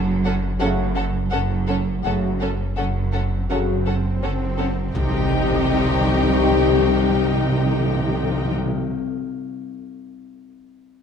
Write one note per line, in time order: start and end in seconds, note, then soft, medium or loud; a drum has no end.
0.00 0.52 F#1 medium
0.00 2.03 F#1 loud
0.00 0.52 F#2 medium
0.25 0.34 C#4 medium
0.25 0.34 A4 medium
0.25 0.33 F#5 medium
0.59 1.23 F#1 medium
0.59 1.23 F#2 medium
0.59 0.86 C#3 medium
0.59 0.86 F#3 medium
0.59 0.85 A3 medium
0.59 0.69 C#4 medium
0.59 0.85 F#4 medium
0.59 0.69 A4 medium
0.59 0.67 F#5 medium
0.95 1.04 C#4 medium
0.95 1.04 A4 medium
0.95 1.03 F#5 medium
1.30 1.96 F#1 medium
1.30 1.96 F#2 medium
1.30 1.41 C#4 medium
1.30 1.40 A4 medium
1.30 1.38 F#5 medium
1.67 1.77 C#4 medium
1.67 1.76 A4 medium
1.67 1.75 F#5 medium
2.03 4.90 F#1 loud
2.03 2.69 F#1 medium
2.03 2.69 F#2 medium
2.03 2.31 C#3 medium
2.03 2.30 F#3 medium
2.03 2.30 A3 medium
2.03 2.14 C#4 medium
2.03 2.30 F#4 medium
2.03 2.13 A4 medium
2.03 2.12 F#5 medium
2.03 swell medium
2.40 2.50 C#4 medium
2.40 2.49 A4 medium
2.40 2.48 F#5 soft
2.76 3.41 F#1 medium
2.76 3.42 F#2 medium
2.76 2.86 C#4 medium
2.76 2.85 A4 medium
2.76 2.84 F#5 medium
3.13 3.22 C#4 soft
3.13 3.21 A4 medium
3.13 3.21 F#5 medium
3.50 4.14 F#1 medium
3.50 4.14 F#2 medium
3.50 3.76 C#3 medium
3.50 3.76 F#3 medium
3.50 3.76 A3 medium
3.50 3.59 C#4 medium
3.50 3.76 F#4 medium
3.50 3.58 A4 medium
3.50 3.58 F#5 medium
3.86 3.95 C#4 soft
3.86 3.94 A4 medium
3.86 3.94 F#5 medium
4.23 4.86 F#1 medium
4.23 4.86 F#2 medium
4.23 4.31 C#4 medium
4.23 4.31 A4 medium
4.23 4.31 F#5 soft
4.58 4.67 C#4 medium
4.58 4.66 A4 medium
4.58 4.66 F#5 soft
4.94 8.53 C2 medium
4.94 8.53 C2 loud
4.94 8.53 C3 medium
4.94 5.02 C3 medium
4.94 8.53 D#3 medium
4.94 8.53 G3 medium
4.94 8.54 D#4 medium
4.94 8.53 G4 medium
4.94 8.54 G4 medium
4.94 8.53 G5 medium
4.94 7.38 G5 medium
4.94 impact medium
5.02 5.09 C3 medium
5.10 5.16 C3 medium
5.16 5.23 C3 medium
5.23 5.30 C3 medium
5.30 5.37 C3 medium
5.37 5.44 C3 medium
5.44 5.51 C3 medium
5.52 5.59 C3 medium
5.59 5.65 C3 medium
5.65 5.72 C3 medium
5.65 7.38 C#6 medium
5.72 5.79 C3 medium
5.80 5.86 C3 medium
5.86 5.93 C3 medium
5.94 6.01 C3 medium
6.01 6.08 C3 medium
6.09 6.16 C3 medium
6.16 6.23 C3 medium
6.23 6.30 C3 medium
6.30 6.37 C3 medium
6.37 6.44 C3 medium
6.44 6.51 C3 medium
6.51 6.58 C3 medium
6.59 6.66 C3 medium
6.66 6.73 C3 medium
6.73 6.80 C3 medium
6.81 6.88 C3 medium
6.88 6.95 C3 medium
6.96 7.03 C3 medium
7.03 7.10 C3 medium
7.10 7.17 C3 medium
7.17 7.24 C3 medium
7.24 7.31 C3 medium
7.31 7.38 C3 medium
7.38 7.45 C3 medium
7.45 7.52 C3 medium
7.52 7.59 C3 medium
7.59 7.67 C3 medium
7.67 7.73 C3 medium
7.73 7.80 C3 medium
7.81 7.88 C3 medium
7.88 7.95 C3 medium
7.95 8.02 C3 medium
8.02 8.09 C3 medium
8.09 8.16 C3 medium
8.17 8.24 C3 medium
8.24 8.30 C3 medium
8.30 8.37 C3 medium
8.38 8.45 C3 medium
8.45 8.52 C3 medium
8.52 8.59 C3 medium
8.59 8.66 C3 medium
8.66 8.73 C3 medium
8.73 8.80 C3 medium